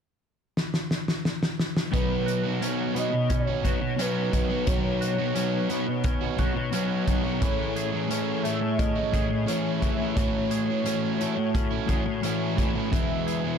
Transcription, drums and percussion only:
0.57 snare medium
0.74 snare medium
0.91 snare medium
1.08 snare medium
1.25 snare medium
1.43 snare medium
1.59 snare medium
1.77 snare medium
1.94 kick loud
1.94 closed hi-hat medium
2.28 closed hi-hat medium
2.62 closed hi-hat medium
2.96 closed hi-hat medium
3.30 kick medium
3.30 closed hi-hat medium
3.65 kick medium
3.65 closed hi-hat medium
3.99 closed hi-hat medium
4.33 kick medium
4.33 closed hi-hat medium
4.67 kick loud
4.67 closed hi-hat medium
5.02 closed hi-hat medium
5.36 closed hi-hat medium
5.70 closed hi-hat medium
6.04 kick loud
6.04 closed hi-hat medium
6.38 kick medium
6.38 closed hi-hat medium
6.73 closed hi-hat medium
7.08 kick medium
7.08 closed hi-hat medium
7.42 kick loud
7.42 closed hi-hat medium
7.76 closed hi-hat medium
8.11 closed hi-hat medium
8.45 closed hi-hat medium
8.79 kick loud
8.79 closed hi-hat medium
9.14 kick medium
9.14 closed hi-hat medium
9.48 closed hi-hat medium
9.82 kick medium
9.82 closed hi-hat medium
10.17 kick loud
10.17 closed hi-hat medium
10.51 closed hi-hat medium
10.86 closed hi-hat medium
11.21 closed hi-hat medium
11.55 kick loud
11.55 closed hi-hat medium
11.89 kick medium
11.89 closed hi-hat medium
12.23 closed hi-hat medium
12.58 kick medium
12.58 closed hi-hat medium
12.93 kick loud
12.93 closed hi-hat medium
13.28 closed hi-hat medium

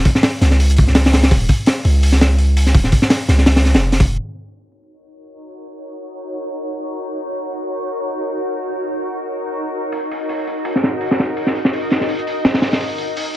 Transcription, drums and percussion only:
0.05 kick loud
0.05 open hi-hat medium
0.15 snare medium
0.23 snare loud
0.23 open hi-hat medium
0.41 snare medium
0.41 open hi-hat medium
0.51 snare soft
0.60 open hi-hat medium
0.70 closed hi-hat soft
0.77 kick loud
0.77 open hi-hat medium
0.88 snare soft
0.95 snare loud
0.95 open hi-hat medium
1.04 snare loud
1.04 open hi-hat medium
1.13 snare loud
1.13 open hi-hat medium
1.22 snare loud
1.22 open hi-hat medium
1.31 kick loud
1.31 open hi-hat medium
1.49 kick medium
1.49 open hi-hat medium
1.66 snare loud
1.66 open hi-hat medium
1.85 open hi-hat medium
2.03 open hi-hat loud
2.12 snare soft
2.21 snare loud
2.21 open hi-hat medium
2.38 open hi-hat medium
2.57 open hi-hat medium
2.66 snare soft
2.75 kick loud
2.75 open hi-hat medium
2.84 snare soft
2.92 kick medium
2.92 open hi-hat medium
3.02 snare medium
3.10 snare loud
3.10 open hi-hat loud
3.29 snare medium
3.29 open hi-hat medium
3.38 snare soft
3.46 snare loud
3.46 open hi-hat medium
3.56 snare loud
3.56 open hi-hat medium
3.65 snare medium
3.65 open hi-hat medium
3.74 snare loud
3.74 open hi-hat medium
3.92 snare medium
3.92 open hi-hat medium
4.00 kick medium
4.00 open hi-hat medium
9.92 open hi-hat medium
10.11 open hi-hat medium
10.29 open hi-hat medium
10.47 open hi-hat medium
10.65 open hi-hat loud
10.76 snare soft
10.83 snare medium
10.83 open hi-hat medium
11.01 open hi-hat medium
11.11 snare medium
11.18 snare medium
11.18 open hi-hat medium
11.37 open hi-hat medium
11.46 snare soft
11.55 open hi-hat medium
11.65 snare medium
11.73 open hi-hat medium
11.90 snare medium
11.90 open hi-hat medium
12.01 snare soft
12.09 open hi-hat medium
12.19 closed hi-hat soft
12.27 open hi-hat medium
12.45 snare loud
12.45 open hi-hat medium
12.54 snare loud
12.54 open hi-hat medium
12.62 snare loud
12.62 open hi-hat medium
12.72 snare medium
12.72 open hi-hat medium
12.81 open hi-hat medium
12.98 open hi-hat medium
13.17 open hi-hat medium

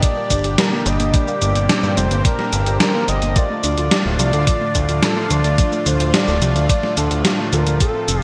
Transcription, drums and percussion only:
0.02 kick loud
0.02 closed hi-hat loud
0.02 shaker soft
0.30 kick medium
0.30 closed hi-hat medium
0.30 shaker medium
0.44 closed hi-hat medium
0.44 shaker soft
0.58 snare loud
0.58 closed hi-hat medium
0.58 shaker soft
0.86 closed hi-hat medium
0.86 shaker medium
1.00 closed hi-hat medium
1.00 shaker soft
1.14 kick loud
1.14 closed hi-hat medium
1.14 shaker soft
1.28 shaker soft
1.42 closed hi-hat medium
1.42 shaker medium
1.55 closed hi-hat medium
1.55 shaker soft
1.69 snare loud
1.69 closed hi-hat medium
1.69 shaker soft
1.83 shaker soft
1.97 closed hi-hat medium
1.97 shaker medium
2.11 closed hi-hat medium
2.11 shaker soft
2.25 kick loud
2.25 closed hi-hat medium
2.25 shaker soft
2.39 snare soft
2.53 closed hi-hat medium
2.53 shaker medium
2.66 closed hi-hat medium
2.66 shaker soft
2.80 snare loud
2.80 closed hi-hat medium
2.80 shaker soft
3.08 closed hi-hat medium
3.08 shaker medium
3.22 closed hi-hat medium
3.22 shaker soft
3.36 kick loud
3.36 closed hi-hat medium
3.36 shaker soft
3.64 closed hi-hat medium
3.64 shaker medium
3.78 closed hi-hat medium
3.78 shaker soft
3.91 snare loud
3.91 closed hi-hat medium
3.91 shaker soft
4.19 closed hi-hat medium
4.19 shaker medium
4.33 closed hi-hat medium
4.33 shaker soft
4.47 kick loud
4.47 closed hi-hat medium
4.47 shaker soft
4.75 kick medium
4.75 closed hi-hat medium
4.75 shaker medium
4.89 closed hi-hat medium
4.89 shaker soft
5.03 snare loud
5.03 closed hi-hat medium
5.03 shaker soft
5.30 closed hi-hat medium
5.30 shaker medium
5.44 closed hi-hat medium
5.44 shaker soft
5.58 kick loud
5.58 closed hi-hat medium
5.58 shaker soft
5.72 shaker soft
5.86 closed hi-hat medium
5.86 shaker medium
6.00 closed hi-hat medium
6.00 shaker soft
6.14 snare loud
6.14 closed hi-hat medium
6.14 shaker soft
6.28 shaker soft
6.42 closed hi-hat medium
6.42 shaker medium
6.56 closed hi-hat medium
6.56 shaker soft
6.69 kick loud
6.69 closed hi-hat loud
6.69 shaker soft
6.83 snare soft
6.97 closed hi-hat medium
6.97 shaker medium
7.11 closed hi-hat medium
7.11 shaker soft
7.25 snare loud
7.25 closed hi-hat medium
7.25 shaker soft
7.53 closed hi-hat medium
7.53 shaker medium
7.67 closed hi-hat medium
7.67 shaker soft
7.80 kick loud
7.80 closed hi-hat medium
7.80 shaker soft
8.08 closed hi-hat medium
8.08 shaker medium

